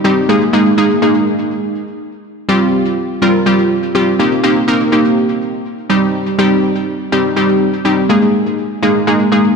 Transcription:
synth pluck
0.04 G3 C4 D#4 G4
0.29 G#3 A#3 D#4 G#4
0.53 G#3 A#3 D#4 G#4
0.77 G#3 A#3 D#4 G#4
1.02 G#3 A#3 D#4 G#4
2.49 G3 C4 F4 G4
3.22 G3 C4 F4 A#4
3.46 G3 C4 F4 G4
3.95 G3 C4 F4 G4
4.19 A#3 C4 D#4 G4
4.43 A#3 C4 D#4 G4
4.68 A#3 C4 D#4 A#4
4.92 A#3 C4 D#4 G4
5.90 G3 C4 D#4 G4
6.38 G3 C4 D#4 G4
7.12 G3 C4 D#4 G4
7.36 G3 C4 D#4 G4
7.85 G3 C4 D#4 G4
8.09 G#3 A#3 D#4 G#4
8.83 G#3 A#3 D#4 G#4
9.07 G#3 A#3 D#4 G#4
9.32 G#3 A#3 D#4 G#4

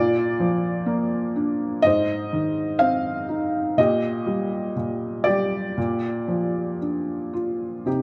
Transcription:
felt piano
Already playing: A#2 F4 D5
0.40 F3
0.86 A#3
1.36 D4
1.82 G#2 C5 D#5
2.33 D#3
2.79 C4 F5
3.29 D#4
3.78 A#2 G4 D#5
4.27 G3
4.76 A#2
5.24 G4 D5
5.28 G3
5.78 A#2
6.28 F3
6.81 D4
7.33 F4
7.86 C3 D#4 G4

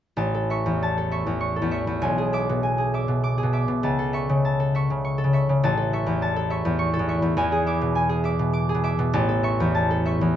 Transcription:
harp
0.17 A1 A5
0.34 A4
0.50 E5 C#6
0.66 E2
0.83 A5
0.98 A4
1.11 E5 C#6
1.26 E2
1.41 C#6
1.56 A4
1.62 E2
1.71 E5 C#6
1.87 E2
2.02 B1 G#5
2.18 G#4
2.33 E5 D6
2.49 B2
2.63 G#5
2.78 G#4
2.94 E5 D6
3.08 B2
3.24 D6
3.38 G#4
3.43 B2
3.53 E5 D6
3.68 B2
3.83 C#2 A5
3.99 A4
4.13 E5 C#6
4.29 C#3
4.45 A5
4.60 A4
4.75 E5 C#6
4.90 C#3
5.05 C#6
5.18 A4
5.24 C#3
5.33 E5 C#6
5.49 C#3
5.63 A1 A5
5.77 A4
5.93 E5 C#6
6.07 E2
6.22 A5
6.36 A4
6.50 E5 C#6
6.65 E2
6.79 C#6
6.94 A4
6.99 E2
7.08 E5 C#6
7.22 E2
7.37 E2 G#5
7.52 G#4
7.66 E5 D6
7.81 B2
7.95 G#5
8.09 G#4
8.24 E5 D6
8.39 B2
8.53 D6
8.69 G#4
8.74 B2
8.84 E5 D6
8.99 B2
9.13 A1 A5
9.29 A4
9.43 E5 C#6
9.60 E2
9.75 A5
9.91 A4
10.05 E5 C#6
10.21 E2

